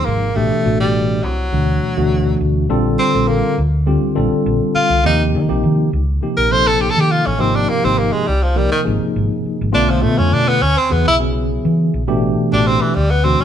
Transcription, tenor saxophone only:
0, 0, Header, 1, 2, 480
1, 0, Start_track
1, 0, Tempo, 586510
1, 291, Time_signature, 4, 2, 24, 8
1, 11002, End_track
2, 0, Start_track
2, 0, Title_t, "Tenor saxophone"
2, 0, Program_c, 0, 66
2, 41, Note_on_c, 0, 58, 79
2, 292, Note_on_c, 0, 57, 85
2, 304, Note_off_c, 0, 58, 0
2, 654, Note_off_c, 0, 57, 0
2, 657, Note_on_c, 0, 55, 71
2, 1007, Note_on_c, 0, 54, 72
2, 1019, Note_off_c, 0, 55, 0
2, 1969, Note_off_c, 0, 54, 0
2, 2446, Note_on_c, 0, 60, 76
2, 2683, Note_on_c, 0, 58, 71
2, 2696, Note_off_c, 0, 60, 0
2, 2927, Note_off_c, 0, 58, 0
2, 3889, Note_on_c, 0, 65, 92
2, 4113, Note_off_c, 0, 65, 0
2, 4145, Note_on_c, 0, 63, 76
2, 4284, Note_off_c, 0, 63, 0
2, 5214, Note_on_c, 0, 70, 88
2, 5335, Note_on_c, 0, 72, 101
2, 5348, Note_off_c, 0, 70, 0
2, 5461, Note_on_c, 0, 69, 90
2, 5473, Note_off_c, 0, 72, 0
2, 5576, Note_on_c, 0, 67, 78
2, 5588, Note_off_c, 0, 69, 0
2, 5649, Note_on_c, 0, 69, 98
2, 5661, Note_off_c, 0, 67, 0
2, 5732, Note_on_c, 0, 67, 85
2, 5744, Note_off_c, 0, 69, 0
2, 5820, Note_on_c, 0, 65, 87
2, 5833, Note_off_c, 0, 67, 0
2, 5945, Note_on_c, 0, 61, 80
2, 5957, Note_off_c, 0, 65, 0
2, 6060, Note_on_c, 0, 60, 77
2, 6072, Note_off_c, 0, 61, 0
2, 6182, Note_on_c, 0, 62, 86
2, 6194, Note_off_c, 0, 60, 0
2, 6293, Note_on_c, 0, 58, 86
2, 6305, Note_off_c, 0, 62, 0
2, 6422, Note_on_c, 0, 60, 79
2, 6434, Note_off_c, 0, 58, 0
2, 6534, Note_on_c, 0, 58, 76
2, 6546, Note_off_c, 0, 60, 0
2, 6650, Note_on_c, 0, 56, 77
2, 6662, Note_off_c, 0, 58, 0
2, 6766, Note_on_c, 0, 55, 85
2, 6779, Note_off_c, 0, 56, 0
2, 6897, Note_on_c, 0, 53, 70
2, 6909, Note_off_c, 0, 55, 0
2, 7017, Note_on_c, 0, 55, 80
2, 7029, Note_off_c, 0, 53, 0
2, 7132, Note_off_c, 0, 55, 0
2, 7137, Note_on_c, 0, 51, 80
2, 7207, Note_off_c, 0, 51, 0
2, 7976, Note_on_c, 0, 62, 81
2, 8102, Note_on_c, 0, 53, 66
2, 8114, Note_off_c, 0, 62, 0
2, 8204, Note_on_c, 0, 57, 88
2, 8217, Note_off_c, 0, 53, 0
2, 8330, Note_on_c, 0, 61, 79
2, 8343, Note_off_c, 0, 57, 0
2, 8458, Note_on_c, 0, 62, 91
2, 8470, Note_off_c, 0, 61, 0
2, 8580, Note_on_c, 0, 59, 86
2, 8592, Note_off_c, 0, 62, 0
2, 8692, Note_on_c, 0, 61, 98
2, 8705, Note_off_c, 0, 59, 0
2, 8819, Note_on_c, 0, 60, 82
2, 8831, Note_off_c, 0, 61, 0
2, 8939, Note_on_c, 0, 59, 74
2, 8951, Note_off_c, 0, 60, 0
2, 9058, Note_off_c, 0, 59, 0
2, 9066, Note_on_c, 0, 64, 96
2, 9133, Note_off_c, 0, 64, 0
2, 10255, Note_on_c, 0, 62, 79
2, 10370, Note_on_c, 0, 60, 78
2, 10382, Note_off_c, 0, 62, 0
2, 10486, Note_on_c, 0, 52, 64
2, 10499, Note_off_c, 0, 60, 0
2, 10596, Note_on_c, 0, 55, 84
2, 10609, Note_off_c, 0, 52, 0
2, 10723, Note_on_c, 0, 59, 77
2, 10735, Note_off_c, 0, 55, 0
2, 10838, Note_on_c, 0, 60, 81
2, 10850, Note_off_c, 0, 59, 0
2, 10973, Note_on_c, 0, 61, 79
2, 10985, Note_off_c, 0, 60, 0
2, 11002, Note_off_c, 0, 61, 0
2, 11002, End_track
0, 0, End_of_file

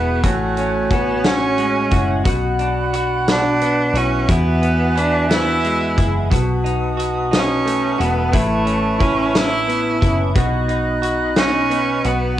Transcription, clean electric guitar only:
0, 0, Header, 1, 2, 480
1, 0, Start_track
1, 0, Tempo, 674157
1, 168, Time_signature, 6, 3, 24, 8
1, 8827, End_track
2, 0, Start_track
2, 0, Title_t, "Clean electric guitar"
2, 0, Program_c, 0, 27
2, 0, Note_on_c, 0, 47, 79
2, 0, Note_on_c, 0, 59, 60
2, 0, Note_on_c, 0, 64, 61
2, 0, Note_on_c, 0, 66, 60
2, 166, Note_off_c, 0, 47, 0
2, 169, Note_off_c, 0, 66, 0
2, 169, Note_on_c, 0, 45, 81
2, 172, Note_on_c, 0, 66, 74
2, 213, Note_off_c, 0, 59, 0
2, 213, Note_off_c, 0, 64, 0
2, 413, Note_on_c, 0, 61, 64
2, 648, Note_off_c, 0, 66, 0
2, 650, Note_on_c, 0, 66, 65
2, 882, Note_off_c, 0, 61, 0
2, 891, Note_on_c, 0, 61, 66
2, 1125, Note_on_c, 0, 56, 57
2, 1357, Note_off_c, 0, 66, 0
2, 1360, Note_on_c, 0, 66, 64
2, 1593, Note_off_c, 0, 45, 0
2, 1596, Note_on_c, 0, 47, 84
2, 1601, Note_off_c, 0, 66, 0
2, 1604, Note_on_c, 0, 66, 68
2, 1655, Note_off_c, 0, 56, 0
2, 1658, Note_off_c, 0, 61, 0
2, 1845, Note_on_c, 0, 62, 61
2, 2086, Note_off_c, 0, 66, 0
2, 2089, Note_on_c, 0, 66, 70
2, 2328, Note_off_c, 0, 62, 0
2, 2575, Note_on_c, 0, 59, 66
2, 2810, Note_off_c, 0, 66, 0
2, 2813, Note_on_c, 0, 66, 60
2, 3044, Note_off_c, 0, 47, 0
2, 3047, Note_on_c, 0, 40, 76
2, 3050, Note_off_c, 0, 66, 0
2, 3053, Note_on_c, 0, 64, 61
2, 3289, Note_off_c, 0, 59, 0
2, 3289, Note_on_c, 0, 59, 67
2, 3519, Note_off_c, 0, 64, 0
2, 3528, Note_on_c, 0, 64, 68
2, 3761, Note_off_c, 0, 59, 0
2, 3764, Note_on_c, 0, 59, 68
2, 4011, Note_on_c, 0, 56, 58
2, 4238, Note_off_c, 0, 64, 0
2, 4247, Note_on_c, 0, 64, 59
2, 4487, Note_on_c, 0, 47, 82
2, 4489, Note_off_c, 0, 64, 0
2, 4490, Note_off_c, 0, 40, 0
2, 4492, Note_on_c, 0, 66, 63
2, 4539, Note_off_c, 0, 56, 0
2, 4726, Note_off_c, 0, 59, 0
2, 4728, Note_on_c, 0, 63, 62
2, 4955, Note_off_c, 0, 66, 0
2, 4964, Note_on_c, 0, 66, 66
2, 5198, Note_off_c, 0, 63, 0
2, 5207, Note_on_c, 0, 63, 70
2, 5447, Note_on_c, 0, 57, 60
2, 5675, Note_off_c, 0, 66, 0
2, 5683, Note_on_c, 0, 66, 59
2, 5922, Note_off_c, 0, 47, 0
2, 5925, Note_off_c, 0, 66, 0
2, 5925, Note_on_c, 0, 45, 87
2, 5928, Note_on_c, 0, 64, 72
2, 5977, Note_off_c, 0, 57, 0
2, 5977, Note_off_c, 0, 63, 0
2, 6158, Note_on_c, 0, 61, 63
2, 6393, Note_off_c, 0, 64, 0
2, 6402, Note_on_c, 0, 64, 70
2, 6639, Note_off_c, 0, 61, 0
2, 6648, Note_on_c, 0, 61, 66
2, 6883, Note_on_c, 0, 59, 59
2, 7120, Note_off_c, 0, 64, 0
2, 7129, Note_on_c, 0, 64, 64
2, 7366, Note_off_c, 0, 45, 0
2, 7369, Note_on_c, 0, 47, 78
2, 7370, Note_off_c, 0, 64, 0
2, 7376, Note_on_c, 0, 66, 72
2, 7415, Note_off_c, 0, 59, 0
2, 7418, Note_off_c, 0, 61, 0
2, 7607, Note_on_c, 0, 63, 62
2, 7837, Note_off_c, 0, 66, 0
2, 7846, Note_on_c, 0, 66, 71
2, 8085, Note_off_c, 0, 63, 0
2, 8094, Note_on_c, 0, 63, 69
2, 8331, Note_on_c, 0, 59, 62
2, 8567, Note_off_c, 0, 66, 0
2, 8575, Note_on_c, 0, 66, 62
2, 8811, Note_off_c, 0, 47, 0
2, 8814, Note_off_c, 0, 66, 0
2, 8827, Note_off_c, 0, 59, 0
2, 8827, Note_off_c, 0, 63, 0
2, 8827, End_track
0, 0, End_of_file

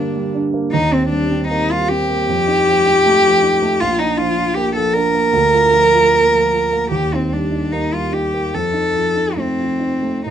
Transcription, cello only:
0, 0, Header, 1, 2, 480
1, 0, Start_track
1, 0, Key_signature, -2, "major"
1, 0, Tempo, 773196
1, 444, Time_signature, 4, 2, 24, 8
1, 3804, Tempo, 801068
1, 5244, Tempo, 867052
1, 6226, End_track
2, 0, Start_track
2, 0, Title_t, "Cello"
2, 0, Program_c, 0, 42
2, 0, Note_on_c, 0, 62, 76
2, 213, Note_off_c, 0, 62, 0
2, 443, Note_on_c, 0, 63, 84
2, 579, Note_on_c, 0, 60, 75
2, 588, Note_off_c, 0, 63, 0
2, 676, Note_off_c, 0, 60, 0
2, 680, Note_on_c, 0, 62, 76
2, 917, Note_off_c, 0, 62, 0
2, 920, Note_on_c, 0, 63, 81
2, 1067, Note_on_c, 0, 65, 79
2, 1076, Note_off_c, 0, 63, 0
2, 1171, Note_on_c, 0, 67, 103
2, 1181, Note_off_c, 0, 65, 0
2, 2360, Note_on_c, 0, 65, 84
2, 2369, Note_off_c, 0, 67, 0
2, 2477, Note_on_c, 0, 63, 74
2, 2487, Note_off_c, 0, 65, 0
2, 2590, Note_on_c, 0, 65, 75
2, 2599, Note_off_c, 0, 63, 0
2, 2822, Note_on_c, 0, 67, 80
2, 2831, Note_off_c, 0, 65, 0
2, 2947, Note_off_c, 0, 67, 0
2, 2953, Note_on_c, 0, 69, 72
2, 3062, Note_on_c, 0, 70, 93
2, 3071, Note_off_c, 0, 69, 0
2, 4272, Note_off_c, 0, 70, 0
2, 4276, Note_on_c, 0, 67, 75
2, 4415, Note_on_c, 0, 60, 62
2, 4424, Note_off_c, 0, 67, 0
2, 4522, Note_on_c, 0, 62, 54
2, 4531, Note_off_c, 0, 60, 0
2, 4759, Note_on_c, 0, 63, 61
2, 4768, Note_off_c, 0, 62, 0
2, 4887, Note_on_c, 0, 65, 59
2, 4896, Note_off_c, 0, 63, 0
2, 5005, Note_on_c, 0, 67, 66
2, 5014, Note_off_c, 0, 65, 0
2, 5252, Note_on_c, 0, 69, 67
2, 5261, Note_off_c, 0, 67, 0
2, 5716, Note_on_c, 0, 60, 58
2, 5725, Note_off_c, 0, 69, 0
2, 6204, Note_off_c, 0, 60, 0
2, 6207, Note_on_c, 0, 63, 59
2, 6226, Note_off_c, 0, 63, 0
2, 6226, End_track
0, 0, End_of_file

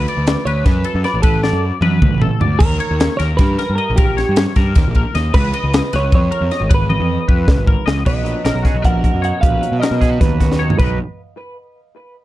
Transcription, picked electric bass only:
0, 0, Header, 1, 2, 480
1, 0, Start_track
1, 0, Tempo, 389610
1, 1545, Time_signature, 7, 3, 24, 8
1, 15088, End_track
2, 0, Start_track
2, 0, Title_t, "Picked electric bass"
2, 0, Program_c, 0, 34
2, 212, Note_on_c, 0, 38, 85
2, 428, Note_off_c, 0, 38, 0
2, 563, Note_on_c, 0, 38, 99
2, 782, Note_off_c, 0, 38, 0
2, 805, Note_on_c, 0, 42, 97
2, 1023, Note_off_c, 0, 42, 0
2, 1168, Note_on_c, 0, 42, 103
2, 1280, Note_off_c, 0, 42, 0
2, 1402, Note_on_c, 0, 33, 90
2, 1516, Note_off_c, 0, 33, 0
2, 1525, Note_on_c, 0, 33, 92
2, 1847, Note_off_c, 0, 33, 0
2, 1878, Note_on_c, 0, 42, 95
2, 2098, Note_off_c, 0, 42, 0
2, 2228, Note_on_c, 0, 42, 95
2, 2452, Note_off_c, 0, 42, 0
2, 2486, Note_on_c, 0, 38, 94
2, 2572, Note_off_c, 0, 38, 0
2, 2580, Note_on_c, 0, 33, 92
2, 2807, Note_off_c, 0, 33, 0
2, 2957, Note_on_c, 0, 38, 85
2, 3176, Note_off_c, 0, 38, 0
2, 3210, Note_on_c, 0, 39, 98
2, 3423, Note_off_c, 0, 39, 0
2, 3577, Note_on_c, 0, 39, 86
2, 3787, Note_off_c, 0, 39, 0
2, 3937, Note_on_c, 0, 39, 86
2, 4147, Note_off_c, 0, 39, 0
2, 4179, Note_on_c, 0, 43, 106
2, 4387, Note_off_c, 0, 43, 0
2, 4554, Note_on_c, 0, 43, 103
2, 4651, Note_off_c, 0, 43, 0
2, 4801, Note_on_c, 0, 34, 92
2, 4895, Note_off_c, 0, 34, 0
2, 4903, Note_on_c, 0, 34, 84
2, 5214, Note_off_c, 0, 34, 0
2, 5286, Note_on_c, 0, 43, 97
2, 5482, Note_off_c, 0, 43, 0
2, 5619, Note_on_c, 0, 43, 103
2, 5827, Note_off_c, 0, 43, 0
2, 5863, Note_on_c, 0, 39, 101
2, 5964, Note_off_c, 0, 39, 0
2, 5995, Note_on_c, 0, 34, 86
2, 6195, Note_off_c, 0, 34, 0
2, 6345, Note_on_c, 0, 39, 91
2, 6550, Note_off_c, 0, 39, 0
2, 6577, Note_on_c, 0, 37, 106
2, 6785, Note_off_c, 0, 37, 0
2, 6941, Note_on_c, 0, 37, 90
2, 7147, Note_off_c, 0, 37, 0
2, 7312, Note_on_c, 0, 37, 103
2, 7513, Note_off_c, 0, 37, 0
2, 7547, Note_on_c, 0, 41, 98
2, 7750, Note_off_c, 0, 41, 0
2, 7900, Note_on_c, 0, 41, 100
2, 8001, Note_off_c, 0, 41, 0
2, 8140, Note_on_c, 0, 32, 86
2, 8241, Note_off_c, 0, 32, 0
2, 8263, Note_on_c, 0, 32, 102
2, 8572, Note_off_c, 0, 32, 0
2, 8624, Note_on_c, 0, 41, 97
2, 8828, Note_off_c, 0, 41, 0
2, 8974, Note_on_c, 0, 41, 93
2, 9183, Note_off_c, 0, 41, 0
2, 9212, Note_on_c, 0, 37, 93
2, 9317, Note_off_c, 0, 37, 0
2, 9331, Note_on_c, 0, 32, 88
2, 9541, Note_off_c, 0, 32, 0
2, 9691, Note_on_c, 0, 37, 85
2, 9901, Note_off_c, 0, 37, 0
2, 9932, Note_on_c, 0, 35, 86
2, 10153, Note_off_c, 0, 35, 0
2, 10153, Note_on_c, 0, 34, 80
2, 10267, Note_off_c, 0, 34, 0
2, 10407, Note_on_c, 0, 34, 83
2, 10515, Note_off_c, 0, 34, 0
2, 10526, Note_on_c, 0, 35, 84
2, 10634, Note_off_c, 0, 35, 0
2, 10767, Note_on_c, 0, 35, 92
2, 10875, Note_off_c, 0, 35, 0
2, 10892, Note_on_c, 0, 34, 103
2, 11208, Note_off_c, 0, 34, 0
2, 11257, Note_on_c, 0, 42, 93
2, 11466, Note_off_c, 0, 42, 0
2, 11610, Note_on_c, 0, 34, 85
2, 11823, Note_off_c, 0, 34, 0
2, 11972, Note_on_c, 0, 47, 77
2, 12080, Note_off_c, 0, 47, 0
2, 12212, Note_on_c, 0, 47, 84
2, 12530, Note_off_c, 0, 47, 0
2, 12575, Note_on_c, 0, 39, 86
2, 13208, Note_off_c, 0, 39, 0
2, 13298, Note_on_c, 0, 35, 76
2, 13524, Note_off_c, 0, 35, 0
2, 15088, End_track
0, 0, End_of_file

